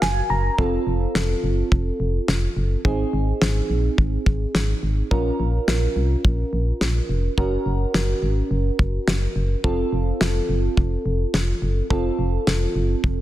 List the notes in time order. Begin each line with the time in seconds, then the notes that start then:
Already playing: C#4 F#4 A#4
0.02 F#1 G#5, snare
0.30 F#1 A#5
0.58 F1 C4 F4 A4, kick
0.87 F1
1.15 F1, snare
1.43 F#1
1.72 F1, kick
2.00 F1
2.28 F1, snare
2.57 F#1
2.85 G#1 C4 D#4 G#4, kick
3.13 G#1
3.42 G#1, snare
3.70 A#1
3.98 G#1, kick
4.26 G#1, kick
4.55 G#1, snare
4.83 G#1
5.11 A#1 C#4 F4 A#4, kick
5.40 A#1
5.68 A#1, snare
5.96 C2
6.25 A#1, kick
6.53 A#1
6.81 A#1, snare
7.09 F1
7.38 F#1 C#4 F#4 A#4, kick
7.66 F#1
7.94 F#1, snare
8.22 G#1
8.51 F#1
8.79 F#1, kick
9.07 F#1, snare
9.36 F#1
9.64 F1 C4 F4 A4, kick
9.92 F1
10.21 F1, snare
10.49 F#1
10.77 F1, kick
11.06 F1
11.34 F1, snare
11.62 F#1
11.90 F1 C4 F4 A4, kick
12.19 F1
12.47 F1, snare
12.75 F#1
13.04 F1, kick